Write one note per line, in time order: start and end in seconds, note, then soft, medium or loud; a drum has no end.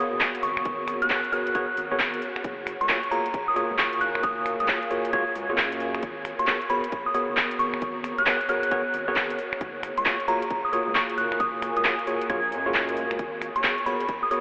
0.00 1.08 B3 medium
0.00 2.22 B3 medium
0.00 1.08 F#4 medium
0.00 13.18 F#4 medium
0.00 1.08 G#4 medium
0.00 1.08 A#4 medium
0.00 1.08 C#5 medium
0.00 3.76 C#5 medium
0.00 0.16 G#5 medium
0.00 2.91 A#5 medium
0.12 0.18 F#1 loud
0.21 kick loud
0.21 clap loud
0.35 closed hi-hat medium
0.43 0.61 G#1 loud
0.43 0.60 C#6 medium
0.43 open hi-hat medium
0.57 finger snap medium
0.65 0.96 G#1 medium
0.65 kick loud
0.65 closed hi-hat medium
0.88 finger snap medium
0.88 open hi-hat loud
1.02 1.08 D#2 loud
1.02 1.31 F#6 medium
1.02 closed hi-hat medium
1.10 1.20 B3 medium
1.10 1.20 F#4 medium
1.10 1.20 G#4 medium
1.10 1.20 A#4 medium
1.10 1.20 C#5 loud
1.10 kick loud
1.10 clap loud
1.24 closed hi-hat soft
1.32 1.53 B3 medium
1.32 1.53 F#4 medium
1.32 1.53 G#4 medium
1.32 1.53 A#4 medium
1.32 1.53 C#5 medium
1.32 1.96 F#6 medium
1.32 open hi-hat medium
1.47 closed hi-hat medium
1.55 1.65 B3 medium
1.55 1.65 F#4 medium
1.55 1.65 G#4 medium
1.55 1.65 A#4 medium
1.55 1.65 C#5 loud
1.55 kick loud
1.55 closed hi-hat medium
1.77 2.19 G#1 medium
1.77 open hi-hat loud
1.91 2.21 B3 loud
1.91 2.21 F#4 medium
1.91 2.21 G#4 medium
1.91 2.21 A#4 medium
1.91 2.21 C#5 loud
2.00 kick loud
2.00 clap loud
2.14 closed hi-hat medium
2.22 open hi-hat medium
2.36 6.03 A#4 medium
2.36 finger snap medium
2.44 2.75 F#1 loud
2.44 kick loud
2.44 closed hi-hat medium
2.49 7.37 F5 medium
2.67 7.37 G#5 medium
2.67 finger snap medium
2.67 open hi-hat loud
2.81 2.87 C#2 loud
2.81 2.94 C#6 medium
2.81 closed hi-hat medium
2.89 2.99 A#3 medium
2.89 2.99 F4 medium
2.89 2.99 F#4 medium
2.89 2.99 G#4 medium
2.89 2.99 C#5 medium
2.89 kick loud
2.89 clap loud
3.03 closed hi-hat soft
3.11 3.26 A#3 medium
3.11 3.26 F4 medium
3.11 3.26 F#4 medium
3.11 3.26 G#4 medium
3.11 3.26 C#5 medium
3.11 3.28 A#5 medium
3.11 open hi-hat medium
3.26 closed hi-hat medium
3.34 kick loud
3.34 closed hi-hat medium
3.48 3.53 D#6 medium
3.56 4.66 A#3 medium
3.56 4.66 F4 medium
3.56 4.66 F#4 medium
3.56 4.66 G#4 medium
3.56 4.66 C#5 medium
3.56 3.65 D#6 medium
3.56 open hi-hat loud
3.70 3.77 C#2 loud
3.79 3.96 C#6 medium
3.79 kick loud
3.79 clap loud
3.93 closed hi-hat medium
4.01 4.19 F#1 loud
4.01 4.18 F#6 medium
4.01 open hi-hat medium
4.15 finger snap medium
4.23 4.54 F#1 medium
4.23 4.40 D#6 medium
4.23 kick loud
4.23 closed hi-hat medium
4.46 finger snap soft
4.46 open hi-hat medium
4.60 4.66 C#2 medium
4.60 4.73 D#6 medium
4.60 closed hi-hat medium
4.68 4.78 A#3 medium
4.68 4.78 F4 medium
4.68 4.78 F#4 medium
4.68 4.78 G#4 medium
4.68 4.78 C#5 medium
4.68 kick loud
4.68 clap loud
4.83 closed hi-hat soft
4.91 5.11 A#3 medium
4.91 5.11 F4 medium
4.91 5.11 F#4 medium
4.91 5.11 G#4 medium
4.91 5.11 C#5 medium
4.91 open hi-hat medium
5.05 closed hi-hat medium
5.13 5.24 C#2 medium
5.13 5.23 A#3 loud
5.13 5.23 F4 medium
5.13 5.23 F#4 medium
5.13 5.23 G#4 medium
5.13 5.23 C#5 loud
5.13 5.77 G#6 medium
5.13 kick loud
5.13 closed hi-hat medium
5.35 5.51 C#2 medium
5.35 open hi-hat loud
5.50 5.99 F#2 medium
5.50 6.02 A#3 medium
5.50 6.02 F4 medium
5.50 6.02 F#4 medium
5.50 6.02 G#4 medium
5.50 6.02 C#5 loud
5.58 kick loud
5.58 clap loud
5.72 closed hi-hat medium
5.80 open hi-hat medium
5.95 finger snap medium
5.95 closed hi-hat soft
6.03 6.34 G#1 medium
6.03 kick loud
6.03 closed hi-hat medium
6.16 10.88 C#5 medium
6.24 9.39 B3 medium
6.24 finger snap soft
6.24 open hi-hat loud
6.39 6.45 D#2 medium
6.39 10.60 A#5 medium
6.39 6.52 C#6 medium
6.39 closed hi-hat medium
6.47 6.57 B3 medium
6.47 6.57 F#4 medium
6.47 6.57 G#4 medium
6.47 6.57 A#4 medium
6.47 6.57 C#5 medium
6.47 kick loud
6.47 clap loud
6.62 closed hi-hat soft
6.70 6.85 B3 medium
6.70 6.85 F#4 medium
6.70 6.85 G#4 medium
6.70 6.85 A#4 medium
6.70 6.85 C#5 loud
6.70 6.87 B5 medium
6.70 open hi-hat medium
6.84 closed hi-hat medium
6.92 kick loud
6.92 closed hi-hat medium
7.06 7.12 D#6 medium
7.14 8.25 B3 medium
7.14 8.25 F#4 medium
7.14 8.25 G#4 medium
7.14 8.25 A#4 medium
7.14 8.24 C#5 medium
7.14 7.24 D#6 medium
7.14 open hi-hat loud
7.29 7.35 F#1 loud
7.37 kick loud
7.37 clap loud
7.51 closed hi-hat medium
7.59 7.78 G#1 medium
7.59 7.76 C#6 medium
7.59 open hi-hat medium
7.74 finger snap medium
7.82 8.13 G#1 loud
7.82 kick loud
7.82 closed hi-hat medium
8.04 finger snap soft
8.04 open hi-hat loud
8.18 8.24 D#2 medium
8.18 8.47 F#6 medium
8.18 closed hi-hat medium
8.26 8.36 B3 medium
8.26 8.36 F#4 medium
8.26 8.36 G#4 medium
8.26 8.36 A#4 medium
8.26 8.36 C#5 medium
8.26 kick loud
8.26 clap loud
8.41 closed hi-hat soft
8.49 8.69 B3 medium
8.49 8.69 F#4 medium
8.49 8.69 G#4 medium
8.49 8.69 A#4 medium
8.49 8.69 C#5 medium
8.49 9.13 F#6 medium
8.49 open hi-hat medium
8.63 closed hi-hat medium
8.71 8.81 B3 medium
8.71 8.81 F#4 medium
8.71 8.81 G#4 medium
8.71 8.81 A#4 medium
8.71 8.81 C#5 loud
8.71 kick loud
8.71 closed hi-hat medium
8.94 9.35 G#1 medium
8.94 open hi-hat loud
9.08 9.38 B3 medium
9.08 9.38 F#4 medium
9.08 9.38 G#4 medium
9.08 9.38 A#4 medium
9.08 9.38 C#5 loud
9.16 kick loud
9.16 clap loud
9.30 closed hi-hat medium
9.38 open hi-hat medium
9.53 finger snap medium
9.57 9.92 F#1 loud
9.57 13.19 A#4 medium
9.57 kick loud
9.57 closed hi-hat medium
9.83 14.31 F5 medium
9.83 finger snap medium
9.83 open hi-hat loud
9.97 10.04 C#2 medium
9.97 10.11 C#6 medium
9.97 closed hi-hat medium
10.05 10.15 A#3 medium
10.05 10.15 F4 medium
10.05 10.15 F#4 medium
10.05 10.15 G#4 medium
10.05 10.15 C#5 medium
10.05 14.40 G#5 medium
10.05 kick loud
10.05 clap loud
10.20 closed hi-hat soft
10.28 10.43 A#3 medium
10.28 10.43 F4 medium
10.28 10.43 F#4 medium
10.28 10.43 G#4 medium
10.28 10.43 C#5 loud
10.28 10.45 A#5 medium
10.28 open hi-hat medium
10.42 closed hi-hat medium
10.50 kick loud
10.50 closed hi-hat medium
10.65 10.70 D#6 medium
10.73 11.83 A#3 medium
10.73 11.83 F4 medium
10.73 11.83 F#4 medium
10.73 11.83 G#4 medium
10.73 11.83 C#5 medium
10.73 10.82 D#6 medium
10.73 open hi-hat loud
10.87 10.93 C#2 loud
10.95 11.12 C#6 medium
10.95 kick loud
10.95 clap loud
11.10 closed hi-hat medium
11.18 11.36 F#1 loud
11.18 11.35 F#6 medium
11.18 open hi-hat medium
11.32 finger snap medium
11.40 11.71 F#1 loud
11.40 11.57 D#6 medium
11.40 kick loud
11.40 closed hi-hat medium
11.62 finger snap medium
11.62 open hi-hat loud
11.77 11.83 C#2 loud
11.77 11.90 D#6 medium
11.77 closed hi-hat medium
11.85 11.94 A#3 medium
11.85 11.94 F4 medium
11.85 11.94 F#4 medium
11.85 11.94 G#4 medium
11.85 11.94 C#5 loud
11.85 kick loud
11.85 clap loud
11.99 closed hi-hat soft
12.07 12.28 A#3 medium
12.07 12.28 F4 medium
12.07 12.28 F#4 medium
12.07 12.28 G#4 medium
12.07 12.28 C#5 medium
12.07 open hi-hat loud
12.21 closed hi-hat medium
12.29 12.53 A#1 loud
12.29 12.39 A#3 medium
12.29 12.39 F4 medium
12.29 12.39 F#4 medium
12.29 12.39 G#4 medium
12.29 12.39 C#5 loud
12.29 12.93 G#6 medium
12.29 kick loud
12.29 closed hi-hat medium
12.29 swell medium
12.52 13.05 F#2 medium
12.52 open hi-hat loud
12.66 13.18 A#3 medium
12.66 13.18 F4 medium
12.66 13.18 F#4 medium
12.66 13.18 G#4 medium
12.66 13.18 C#5 loud
12.74 kick loud
12.74 clap loud
12.89 closed hi-hat medium
12.97 open hi-hat medium
13.11 13.17 C#2 loud
13.11 finger snap medium
13.11 closed hi-hat soft
13.19 13.50 G#1 loud
13.19 14.40 F#4 medium
13.19 kick loud
13.19 closed hi-hat medium
13.42 14.40 C#5 medium
13.42 finger snap medium
13.42 open hi-hat loud
13.54 13.62 D#2 medium
13.54 14.40 A#5 medium
13.54 13.69 C#6 medium
13.54 closed hi-hat medium
13.59 14.40 B3 medium
13.64 13.73 B3 medium
13.64 13.73 F#4 medium
13.64 13.73 G#4 medium
13.64 13.73 A#4 medium
13.64 13.73 C#5 medium
13.64 kick loud
13.64 clap loud
13.78 closed hi-hat soft
13.86 14.01 B3 medium
13.86 14.01 F#4 medium
13.86 14.01 G#4 medium
13.86 14.01 A#4 medium
13.86 14.01 C#5 medium
13.86 14.03 B5 medium
13.86 open hi-hat medium
14.01 closed hi-hat medium
14.09 kick loud
14.09 closed hi-hat medium
14.23 14.28 D#6 medium
14.31 14.40 B3 medium
14.31 14.40 F#4 medium
14.31 14.40 G#4 medium
14.31 14.40 A#4 medium
14.31 14.40 C#5 medium
14.31 14.40 D#6 medium
14.31 open hi-hat loud